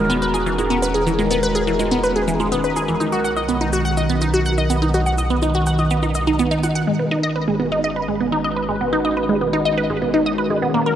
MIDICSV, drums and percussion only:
0, 0, Header, 1, 2, 480
1, 0, Start_track
1, 0, Key_signature, 5, "minor"
1, 0, Tempo, 483871
1, 1060, Time_signature, 4, 2, 24, 8
1, 10869, End_track
2, 0, Start_track
2, 0, Title_t, "Drums"
2, 101, Note_on_c, 9, 69, 59
2, 200, Note_off_c, 9, 69, 0
2, 221, Note_on_c, 9, 69, 37
2, 320, Note_off_c, 9, 69, 0
2, 341, Note_on_c, 9, 61, 39
2, 341, Note_on_c, 9, 69, 80
2, 440, Note_off_c, 9, 61, 0
2, 440, Note_off_c, 9, 69, 0
2, 462, Note_on_c, 9, 69, 36
2, 561, Note_off_c, 9, 69, 0
2, 583, Note_on_c, 9, 61, 70
2, 583, Note_on_c, 9, 69, 60
2, 682, Note_off_c, 9, 61, 0
2, 682, Note_off_c, 9, 69, 0
2, 702, Note_on_c, 9, 69, 37
2, 801, Note_off_c, 9, 69, 0
2, 822, Note_on_c, 9, 69, 90
2, 922, Note_off_c, 9, 69, 0
2, 941, Note_on_c, 9, 61, 39
2, 941, Note_on_c, 9, 69, 36
2, 1040, Note_off_c, 9, 61, 0
2, 1040, Note_off_c, 9, 69, 0
2, 1061, Note_on_c, 9, 69, 59
2, 1160, Note_off_c, 9, 69, 0
2, 1183, Note_on_c, 9, 61, 70
2, 1183, Note_on_c, 9, 69, 35
2, 1282, Note_off_c, 9, 61, 0
2, 1282, Note_off_c, 9, 69, 0
2, 1302, Note_on_c, 9, 69, 82
2, 1402, Note_off_c, 9, 69, 0
2, 1422, Note_on_c, 9, 69, 36
2, 1521, Note_off_c, 9, 69, 0
2, 1543, Note_on_c, 9, 61, 39
2, 1543, Note_on_c, 9, 69, 60
2, 1642, Note_off_c, 9, 61, 0
2, 1642, Note_off_c, 9, 69, 0
2, 1661, Note_on_c, 9, 69, 34
2, 1761, Note_off_c, 9, 69, 0
2, 1782, Note_on_c, 9, 61, 66
2, 1782, Note_on_c, 9, 69, 83
2, 1881, Note_off_c, 9, 61, 0
2, 1881, Note_off_c, 9, 69, 0
2, 1901, Note_on_c, 9, 69, 34
2, 2000, Note_off_c, 9, 69, 0
2, 2021, Note_on_c, 9, 69, 59
2, 2120, Note_off_c, 9, 69, 0
2, 2143, Note_on_c, 9, 61, 41
2, 2143, Note_on_c, 9, 69, 35
2, 2242, Note_off_c, 9, 61, 0
2, 2242, Note_off_c, 9, 69, 0
2, 2261, Note_on_c, 9, 69, 81
2, 2360, Note_off_c, 9, 69, 0
2, 2380, Note_on_c, 9, 61, 68
2, 2380, Note_on_c, 9, 69, 35
2, 2479, Note_off_c, 9, 61, 0
2, 2479, Note_off_c, 9, 69, 0
2, 2501, Note_on_c, 9, 69, 57
2, 2600, Note_off_c, 9, 69, 0
2, 2619, Note_on_c, 9, 69, 35
2, 2718, Note_off_c, 9, 69, 0
2, 2741, Note_on_c, 9, 61, 42
2, 2741, Note_on_c, 9, 69, 89
2, 2841, Note_off_c, 9, 61, 0
2, 2841, Note_off_c, 9, 69, 0
2, 2860, Note_on_c, 9, 69, 35
2, 2959, Note_off_c, 9, 69, 0
2, 2983, Note_on_c, 9, 61, 70
2, 2983, Note_on_c, 9, 69, 60
2, 3082, Note_off_c, 9, 61, 0
2, 3082, Note_off_c, 9, 69, 0
2, 3102, Note_on_c, 9, 69, 36
2, 3202, Note_off_c, 9, 69, 0
2, 3222, Note_on_c, 9, 69, 83
2, 3321, Note_off_c, 9, 69, 0
2, 3341, Note_on_c, 9, 61, 40
2, 3341, Note_on_c, 9, 69, 36
2, 3440, Note_off_c, 9, 61, 0
2, 3440, Note_off_c, 9, 69, 0
2, 3459, Note_on_c, 9, 69, 58
2, 3558, Note_off_c, 9, 69, 0
2, 3580, Note_on_c, 9, 61, 67
2, 3580, Note_on_c, 9, 69, 33
2, 3679, Note_off_c, 9, 61, 0
2, 3679, Note_off_c, 9, 69, 0
2, 3698, Note_on_c, 9, 69, 81
2, 3797, Note_off_c, 9, 69, 0
2, 3821, Note_on_c, 9, 69, 35
2, 3920, Note_off_c, 9, 69, 0
2, 3940, Note_on_c, 9, 61, 42
2, 3940, Note_on_c, 9, 69, 59
2, 4039, Note_off_c, 9, 61, 0
2, 4039, Note_off_c, 9, 69, 0
2, 4059, Note_on_c, 9, 69, 35
2, 4158, Note_off_c, 9, 69, 0
2, 4179, Note_on_c, 9, 61, 68
2, 4179, Note_on_c, 9, 69, 80
2, 4279, Note_off_c, 9, 61, 0
2, 4279, Note_off_c, 9, 69, 0
2, 4300, Note_on_c, 9, 69, 34
2, 4399, Note_off_c, 9, 69, 0
2, 4420, Note_on_c, 9, 69, 57
2, 4519, Note_off_c, 9, 69, 0
2, 4541, Note_on_c, 9, 61, 40
2, 4541, Note_on_c, 9, 69, 34
2, 4640, Note_off_c, 9, 61, 0
2, 4640, Note_off_c, 9, 69, 0
2, 4662, Note_on_c, 9, 69, 88
2, 4762, Note_off_c, 9, 69, 0
2, 4782, Note_on_c, 9, 61, 71
2, 4782, Note_on_c, 9, 69, 35
2, 4882, Note_off_c, 9, 61, 0
2, 4882, Note_off_c, 9, 69, 0
2, 4900, Note_on_c, 9, 69, 58
2, 4999, Note_off_c, 9, 69, 0
2, 5019, Note_on_c, 9, 69, 37
2, 5118, Note_off_c, 9, 69, 0
2, 5138, Note_on_c, 9, 61, 42
2, 5138, Note_on_c, 9, 69, 85
2, 5237, Note_off_c, 9, 61, 0
2, 5237, Note_off_c, 9, 69, 0
2, 5257, Note_on_c, 9, 69, 36
2, 5356, Note_off_c, 9, 69, 0
2, 5377, Note_on_c, 9, 61, 76
2, 5377, Note_on_c, 9, 69, 60
2, 5476, Note_off_c, 9, 61, 0
2, 5476, Note_off_c, 9, 69, 0
2, 5496, Note_on_c, 9, 69, 34
2, 5596, Note_off_c, 9, 69, 0
2, 5617, Note_on_c, 9, 69, 82
2, 5717, Note_off_c, 9, 69, 0
2, 5738, Note_on_c, 9, 61, 43
2, 5738, Note_on_c, 9, 69, 35
2, 5838, Note_off_c, 9, 61, 0
2, 5838, Note_off_c, 9, 69, 0
2, 5858, Note_on_c, 9, 69, 61
2, 5957, Note_off_c, 9, 69, 0
2, 5978, Note_on_c, 9, 61, 76
2, 5978, Note_on_c, 9, 69, 37
2, 6077, Note_off_c, 9, 61, 0
2, 6077, Note_off_c, 9, 69, 0
2, 6097, Note_on_c, 9, 69, 83
2, 6196, Note_off_c, 9, 69, 0
2, 6218, Note_on_c, 9, 69, 35
2, 6318, Note_off_c, 9, 69, 0
2, 6340, Note_on_c, 9, 61, 43
2, 6340, Note_on_c, 9, 69, 60
2, 6439, Note_off_c, 9, 61, 0
2, 6439, Note_off_c, 9, 69, 0
2, 6461, Note_on_c, 9, 69, 36
2, 6560, Note_off_c, 9, 69, 0
2, 6581, Note_on_c, 9, 61, 77
2, 6581, Note_on_c, 9, 69, 90
2, 6680, Note_off_c, 9, 61, 0
2, 6680, Note_off_c, 9, 69, 0
2, 6701, Note_on_c, 9, 69, 36
2, 6800, Note_off_c, 9, 69, 0
2, 10869, End_track
0, 0, End_of_file